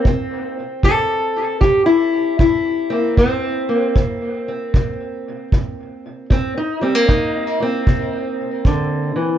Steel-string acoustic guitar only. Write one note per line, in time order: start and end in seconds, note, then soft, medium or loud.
0.07 0.79 C3 medium
0.07 2.90 C4 medium
0.84 1.57 C3 medium
0.84 1.60 A4 medium
1.61 2.35 C3 medium
1.61 1.86 G4 medium
1.86 2.39 E4 medium
2.40 3.13 C3 medium
2.40 2.92 E4 medium
2.90 3.21 A#3 soft
2.90 3.17 C4 medium
3.18 3.90 C3 medium
3.18 3.96 C4 loud
3.69 6.27 A#3 soft
3.96 4.68 C3 medium
4.48 6.31 C4 soft
4.76 5.48 C3 medium
5.54 6.25 C3 medium
6.30 7.03 C3 medium
6.30 6.57 C4 loud
6.57 6.82 D#4 medium
6.81 6.95 G3 soft
6.81 7.08 C4 medium
6.95 7.59 A#3 soft
7.08 7.81 C3 medium
7.08 7.61 D#4 medium
7.60 9.38 A#3 soft
7.60 9.38 C4 medium
7.88 8.60 C3 medium
8.66 9.15 D3 medium
9.16 9.38 E3 medium